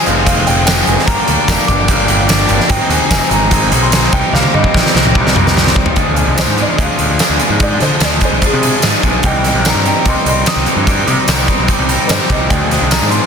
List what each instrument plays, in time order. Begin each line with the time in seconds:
Already playing: overdriven electric guitar F3
0.05 picked electric bass F1, overdriven electric guitar G#3 C4 G#4, upright piano F5, closed hi-hat
0.26 picked electric bass F1, overdriven electric guitar F3 G#3 C4 G#4, upright piano F5, kick, closed hi-hat
0.47 picked electric bass F1, overdriven electric guitar G#3 C4 G#4, upright piano G5, closed hi-hat
0.66 overdriven electric guitar F3 G#3 C4 G#4, upright piano G5, snare, closed hi-hat, tambourine
0.87 picked electric bass F1, upright piano G#5, closed hi-hat
0.99 snare
1.06 picked electric bass G1, overdriven electric guitar A#3 D4 G4, upright piano A#5, kick, closed hi-hat
1.28 picked electric bass D2, overdriven electric guitar D4 G4, closed hi-hat
1.48 picked electric bass F1, overdriven electric guitar A#3 D4 G4, kick, snare, closed hi-hat, tambourine
1.67 picked electric bass G1, overdriven electric guitar D4 G4, upright piano D6, kick, closed hi-hat
1.88 picked electric bass G1, overdriven electric guitar A#3 D4 G4, kick, closed hi-hat
2.08 picked electric bass G1, overdriven electric guitar D4 G4, closed hi-hat
2.29 overdriven electric guitar A#3 D4 G4, snare, closed hi-hat, tambourine
2.49 picked electric bass G1, closed hi-hat
2.60 snare
2.69 picked electric bass G#1, overdriven electric guitar C4 D#4 G#4, upright piano G5, kick, closed hi-hat
2.89 picked electric bass D#2, overdriven electric guitar D#4 G#4, upright piano G#5, closed hi-hat
3.10 picked electric bass F1, overdriven electric guitar C4 D#4 G#4, upright piano G#5, kick, snare, closed hi-hat, tambourine
3.31 picked electric bass G#1, overdriven electric guitar D#4 G#4, upright piano A#5, closed hi-hat
3.51 picked electric bass G#1, overdriven electric guitar C4 D#4 G#4, kick, closed hi-hat
3.71 picked electric bass B1, overdriven electric guitar D#4 G#4, closed hi-hat
3.82 upright piano C6
3.92 overdriven electric guitar C4 D#4 G#4, snare, closed hi-hat, tambourine
4.12 picked electric bass C2, overdriven electric guitar G3 C4 D#4 G4, upright piano G5, kick, closed hi-hat
4.32 picked electric bass C2, overdriven electric guitar G3 C4 D#4 G4, upright piano F5, snare
4.44 high tom
4.52 picked electric bass G2, overdriven electric guitar C4 D#4 G4, upright piano D#5, high tom
4.64 kick
4.74 picked electric bass A#1, overdriven electric guitar G3 C4 D#4 G4, kick, snare
4.86 snare
4.94 picked electric bass C2, overdriven electric guitar C4 D#4 G4, snare
5.05 mid tom
5.14 picked electric bass C2, overdriven electric guitar G3 C4 D#4 G4, kick
5.27 snare
5.34 picked electric bass C2, overdriven electric guitar C4 D#4 G4, mid tom
5.47 snare
5.54 overdriven electric guitar G3 C4 D#4 G4, snare
5.67 snare
5.76 picked electric bass C2, kick
5.86 floor tom
5.95 picked electric bass D2, overdriven electric guitar F3 G#3 D4 G#4, kick, closed hi-hat
6.16 overdriven electric guitar G#3 D4 G#4, closed hi-hat
6.27 picked electric bass C2
6.37 overdriven electric guitar F3 G#3 D4 G#4, upright piano C5, snare, closed hi-hat, tambourine
6.47 picked electric bass G#2
6.57 overdriven electric guitar G#3 D4 G#4, upright piano D5, closed hi-hat
6.78 picked electric bass D2, overdriven electric guitar F3 G#3 D4 G#4, upright piano E5, kick, closed hi-hat
6.82 upright piano F5
6.98 picked electric bass D2, overdriven electric guitar G#3 D4 G#4, closed hi-hat
7.19 overdriven electric guitar F3 G#3 D4 G#4, snare, closed hi-hat, tambourine
7.29 picked electric bass D2
7.39 overdriven electric guitar G#3 D4 G#4, closed hi-hat
7.50 picked electric bass G#2
7.60 overdriven electric guitar F3 G#3 D4 G#4, upright piano D5, kick, closed hi-hat
7.80 picked electric bass D3, overdriven electric guitar G#3 D4 G#4, upright piano C5, snare, closed hi-hat
8.00 picked electric bass D2, overdriven electric guitar F3 G#3 D4 G#4, upright piano D5, snare, closed hi-hat, tambourine
8.20 overdriven electric guitar G#3 D4 G#4, kick, closed hi-hat
8.25 upright piano C5
8.32 picked electric bass C2
8.41 overdriven electric guitar F3 G#3 D4 G#4, kick, closed hi-hat
8.46 upright piano G#4
8.53 picked electric bass C3
8.62 overdriven electric guitar G#3 D4 G#4, closed hi-hat
8.82 picked electric bass G#2, overdriven electric guitar F3 G#3 D4 G#4, snare, closed hi-hat, tambourine
9.03 picked electric bass B1, overdriven electric guitar G#3 D4 G#4, kick, closed hi-hat
9.22 picked electric bass C2, overdriven electric guitar G3 C4 D#4 G4, upright piano D#5 F#5 G5, kick, closed hi-hat
9.44 overdriven electric guitar C4 D#4 G4, upright piano D#5 G5, snare, closed hi-hat
9.54 picked electric bass B1
9.64 overdriven electric guitar G3 C4 D#4 G4, upright piano G5 A#5, snare, closed hi-hat, tambourine
9.74 picked electric bass G2
9.85 overdriven electric guitar C4 D#4 G4, upright piano G5 A#5, closed hi-hat
10.05 picked electric bass C2, overdriven electric guitar G3 C4 D#4 G4, upright piano D#5 C6, kick, closed hi-hat
10.25 picked electric bass C2, overdriven electric guitar C4 D#4 G4, upright piano D#5 C6, closed hi-hat
10.45 overdriven electric guitar G3 C4 D#4 G4, upright piano C6 D#6, snare, closed hi-hat, tambourine
10.56 picked electric bass C2
10.66 overdriven electric guitar C4 D#4 G4, closed hi-hat
10.76 picked electric bass G2
10.86 overdriven electric guitar G3 C4 D#4 G4, kick, closed hi-hat
11.07 picked electric bass C3, overdriven electric guitar C4 D#4 G4, closed hi-hat
11.27 picked electric bass C2, overdriven electric guitar G3 C4 D#4 G4, snare, closed hi-hat, tambourine
11.48 overdriven electric guitar C4 D#4 G4, kick, closed hi-hat
11.59 picked electric bass B1
11.68 overdriven electric guitar G3 C4 D#4 G4, kick, closed hi-hat
11.79 picked electric bass C2
11.89 overdriven electric guitar C4 D#4 G4, closed hi-hat
12.07 picked electric bass G2, overdriven electric guitar G3 C4, upright piano B4 C5, snare, closed hi-hat, tambourine
12.11 overdriven electric guitar D#4 G4
12.30 picked electric bass C2, overdriven electric guitar C4 D#4 G4, upright piano D#5, kick, closed hi-hat
12.49 picked electric bass D2, overdriven electric guitar F3 G#3 D4 G#4, upright piano G5, kick, closed hi-hat
12.71 overdriven electric guitar G#3 D4 G#4, snare, closed hi-hat
12.82 picked electric bass C2
12.90 overdriven electric guitar F3 G#3 D4 G#4, upright piano A#5, snare, closed hi-hat, tambourine
13.02 picked electric bass G#2
13.10 overdriven electric guitar G#3 D4 G#4, upright piano C6, closed hi-hat